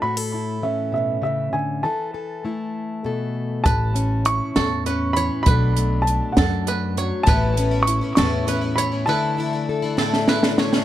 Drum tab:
HH |------------|------------|x-x-x-x-x-x-|x-x-x-x-x-x-|
SD |------------|------------|------o-----|------o-----|
BD |------------|------------|o-----------|o-----o-----|

HH |x-x-x-x-x-x-|------------|
SD |------o-----|------oooooo|
BD |o-----------|------------|